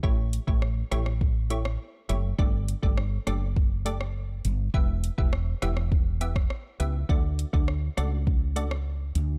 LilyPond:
<<
  \new Staff \with { instrumentName = "Synth stab" } { \time 4/4 \key d \major \tempo 4 = 102 <a e' g' cis''>8. <a e' g' cis''>16 r8 <a e' g' cis''>16 r8. <a e' g' cis''>16 r8. <a e' g' cis''>16 r16 | <a d' g' d''>8. <a d' g' d''>16 r8 <a d' g' d''>16 r8. <a d' g' d''>16 r4 r16 | <b e' g' e''>8. <b e' g' e''>16 r8 <b e' g' e''>16 r8. <b e' g' e''>16 r8. <b e' g' e''>16 r16 | <a d' fis' d''>8. <a d' fis' d''>16 r8 <a d' fis' d''>16 r8. <a d' fis' d''>16 r4 r16 | }
  \new Staff \with { instrumentName = "Fretless electric bass" } { \clef bass \time 4/4 \key d \major a,,8. a,,8. a,,4. r8 fis,,8 | g,,8. g,,8. fis,,2 g,,8 | e,,8. e,,8. e,,4. r8 cis,8 | d,8. d,8. cis,2 d,8 | }
  \new DrumStaff \with { instrumentName = "Drums" } \drummode { \time 4/4 bd8 hh16 bd16 ss8 <hh ss>16 ss16 bd8 hh16 ss16 r8 hh8 | bd8 hh16 bd16 ss8 <hh ss>8 bd8 hh16 ss16 r8 hh8 | bd8 hh16 bd16 ss8 <hh ss>16 ss16 bd8 hh16 <bd ss>16 ss8 hh8 | bd8 hh16 bd16 ss8 <hh ss>8 bd8 hh16 ss16 r8 hh8 | }
>>